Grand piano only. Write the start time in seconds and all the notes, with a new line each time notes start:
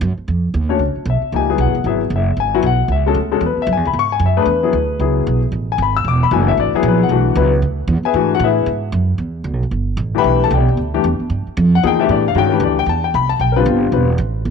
0.69 A3 C#4 D4 F#4 C#5
1.10 E5
1.34 F3 A#3 D#4 G4 G#5
1.50 F#3 B3 E4 G#4
1.61 F#5
1.86 F#3 B3 E4 G#4 E5
2.16 E5
2.40 G#5
2.54 F#3 B3 E4 F#4
2.66 F#5
2.92 E5
3.06 G#3 C#4 F#4 A4
3.32 G#3 C#4 F#4 A4
3.46 B4
3.62 E5
3.73 G#5
3.87 B5
3.99 C#6
4.12 G#5
4.26 E5
4.37 A3 D4 G#4 B4
4.42 B4
4.63 F#3 B3 E4 G#4
5.00 F#3 B3 E4 G#4
5.72 G#5
5.82 B5
5.97 E6
6.08 D6
6.23 B5
6.31 E3 A3 D4 F#4 G#5
6.48 E5
6.60 D5
6.75 F#3 B3 E4 F#4 G#4
6.88 B4
7.03 F#5
7.11 E3 A3 D4 F#4
7.37 F#3 B3 E4 B4
8.05 G#4 B4 E5 G#5
8.15 E3 A3 D4 F#4
8.35 F#4 F#5
8.44 E4 G#4 B4 E5
10.15 E3 A3 D4 G4 B4 E5 B5
10.19 G5
10.44 A4 A5
10.54 G4 D5 E5 G5
10.94 E3 A3 D4 G4
11.75 F#5
11.83 F3 A#3 D#4 G#4 G5
11.99 E3 A3 D4 G4 E5
12.11 D5
12.28 F5
12.35 D#3 G#3 C#4 F#4 G5
12.49 E3 A3 D4 G4 A#4
12.53 B4
12.63 D5
12.79 G5
12.89 A5
13.04 G5
13.15 B5
13.29 A5
13.41 G5
13.52 A#4
13.56 D3 G3 C4 F4 B4
13.93 G3 C4 F4 B4